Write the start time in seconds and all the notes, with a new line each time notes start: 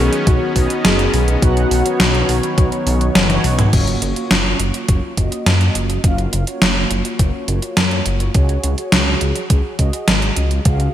Already playing: D#3 F#3 B3 C#4 D#4 F#4 G#4 C#5
0.13 closed hi-hat
0.27 B1 F#4, kick, closed hi-hat
0.56 B1 B3 C#4 D#4 F#4 D#5, kick, open hi-hat
0.70 closed hi-hat
0.84 F#1 G#4, snare, closed hi-hat
0.99 closed hi-hat
1.13 B1, open hi-hat
1.28 closed hi-hat
1.42 B1 B3 C#4 D#4 F#4 F#5, kick, closed hi-hat
1.57 closed hi-hat
1.71 B1, open hi-hat
1.85 B3 C#4 D#4 F#4 C#5, closed hi-hat
2.00 B1, snare, closed hi-hat
2.15 closed hi-hat
2.29 B1, open hi-hat
2.43 closed hi-hat
2.58 B1, kick, closed hi-hat
2.72 closed hi-hat
2.87 B1, open hi-hat
3.01 closed hi-hat
3.15 F#1, snare, closed hi-hat, high tom
3.30 B3 C#4 D#4 F#4 C#5, closed hi-hat, high tom
3.44 B1, open hi-hat
3.59 closed hi-hat, mid tom
3.73 F#1 A#3 C#4 F4 F#4 C#5, kick, closed hi-hat, crash
3.87 closed hi-hat
4.02 F#1, closed hi-hat
4.16 A#3 C#4 F4 F#4 C#5, closed hi-hat
4.31 F#1, snare, closed hi-hat
4.60 F#1, closed hi-hat
4.74 closed hi-hat
4.89 F#1, kick, closed hi-hat
5.17 F#1 A#3 C#4 F4 F#4 D#5, kick, closed hi-hat
5.32 closed hi-hat
5.46 F#2, snare, closed hi-hat
5.61 closed hi-hat
5.75 F#1, closed hi-hat
5.90 closed hi-hat
6.04 F#1 A#3 C#4 F4 F#4 F5, kick, closed hi-hat
6.18 closed hi-hat
6.33 F#1, closed hi-hat
6.47 A#3 C#4 F4 F#4 C#5, closed hi-hat
6.62 F#1, snare, closed hi-hat
6.91 F#1, closed hi-hat
7.05 closed hi-hat
7.19 F#1, kick, closed hi-hat
7.48 F#1, closed hi-hat
7.62 closed hi-hat
7.77 F#2, snare, closed hi-hat
7.91 closed hi-hat
8.06 F#1, closed hi-hat
8.20 closed hi-hat
8.34 C#2 F#4 G#4 C#5, kick, closed hi-hat
8.49 closed hi-hat
8.64 C#2, closed hi-hat
8.78 F#4 G#4 C#5, closed hi-hat
8.92 C#2, snare, closed hi-hat
9.21 C#2, closed hi-hat
9.36 closed hi-hat
9.50 C#2, kick, closed hi-hat
9.79 C#2 F#4 G#4 D#5, kick, closed hi-hat
9.93 closed hi-hat
10.08 G#1, snare, closed hi-hat
10.22 closed hi-hat
10.36 C#2, closed hi-hat
10.51 closed hi-hat
10.65 C#2 F#4 G#4 F5, kick, closed hi-hat
10.80 closed hi-hat